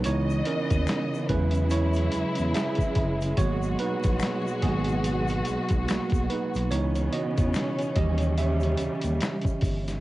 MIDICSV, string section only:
0, 0, Header, 1, 2, 480
1, 0, Start_track
1, 0, Key_signature, 5, "minor"
1, 0, Tempo, 833333
1, 25, Time_signature, 4, 2, 24, 8
1, 5762, End_track
2, 0, Start_track
2, 0, Title_t, "String section"
2, 0, Program_c, 0, 48
2, 23, Note_on_c, 0, 52, 62
2, 23, Note_on_c, 0, 75, 80
2, 24, Note_on_c, 0, 59, 64
2, 26, Note_on_c, 0, 49, 78
2, 737, Note_off_c, 0, 52, 0
2, 737, Note_off_c, 0, 75, 0
2, 738, Note_off_c, 0, 59, 0
2, 745, Note_on_c, 0, 54, 71
2, 745, Note_on_c, 0, 64, 89
2, 746, Note_on_c, 0, 56, 74
2, 1927, Note_off_c, 0, 49, 0
2, 1933, Note_off_c, 0, 54, 0
2, 1934, Note_off_c, 0, 64, 0
2, 1943, Note_on_c, 0, 54, 68
2, 1945, Note_on_c, 0, 47, 78
2, 1946, Note_on_c, 0, 66, 83
2, 3843, Note_off_c, 0, 56, 0
2, 3845, Note_off_c, 0, 54, 0
2, 3846, Note_off_c, 0, 47, 0
2, 3846, Note_off_c, 0, 66, 0
2, 3865, Note_on_c, 0, 61, 80
2, 3866, Note_on_c, 0, 49, 75
2, 3867, Note_on_c, 0, 47, 65
2, 3867, Note_on_c, 0, 59, 65
2, 4579, Note_off_c, 0, 49, 0
2, 4579, Note_off_c, 0, 59, 0
2, 4586, Note_on_c, 0, 55, 71
2, 4587, Note_on_c, 0, 49, 81
2, 5762, Note_off_c, 0, 47, 0
2, 5762, Note_off_c, 0, 49, 0
2, 5762, Note_off_c, 0, 55, 0
2, 5762, Note_off_c, 0, 61, 0
2, 5762, End_track
0, 0, End_of_file